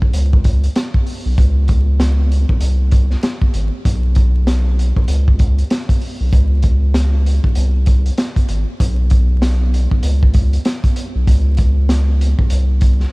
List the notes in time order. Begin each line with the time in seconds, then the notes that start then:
0.02 B1, kick
0.13 C#2, closed hi-hat
0.33 kick
0.44 kick, closed hi-hat
0.64 closed hi-hat
0.76 snare, closed hi-hat
0.94 kick
1.06 open hi-hat
1.25 B1
1.38 C#2, kick, closed hi-hat
1.68 kick, closed hi-hat
2.00 snare, closed hi-hat
2.32 closed hi-hat
2.49 B1, kick
2.61 C2, closed hi-hat
2.91 kick, closed hi-hat
3.11 snare
3.23 snare, closed hi-hat
3.42 kick
3.54 G#1, closed hi-hat
3.85 B1, kick, closed hi-hat
4.15 kick, closed hi-hat
4.47 snare, closed hi-hat
4.79 closed hi-hat
4.97 B1, kick
5.08 C#2, closed hi-hat
5.28 kick
5.39 kick, closed hi-hat
5.58 closed hi-hat
5.70 snare, closed hi-hat
5.89 kick, closed hi-hat
6.01 open hi-hat
6.20 B1
6.33 C#2, kick, closed hi-hat
6.62 kick, closed hi-hat
6.94 snare, closed hi-hat
7.26 closed hi-hat
7.44 B1, kick
7.55 C2, closed hi-hat
7.86 kick, closed hi-hat
8.06 closed hi-hat
8.18 snare, closed hi-hat
8.36 kick, closed hi-hat
8.49 G#1, closed hi-hat
8.80 B1, kick, closed hi-hat
9.10 kick, closed hi-hat
9.42 snare, closed hi-hat
9.74 closed hi-hat
9.91 B1, kick
10.03 C#2, closed hi-hat
10.23 kick
10.34 kick, closed hi-hat
10.53 closed hi-hat
10.65 snare, closed hi-hat
10.84 kick, closed hi-hat
10.96 closed hi-hat
11.15 B1
11.27 C#2, kick, closed hi-hat
11.57 kick, closed hi-hat
11.89 snare, closed hi-hat
12.21 closed hi-hat
12.39 B1, kick
12.50 C2, closed hi-hat
12.81 kick, closed hi-hat
13.00 snare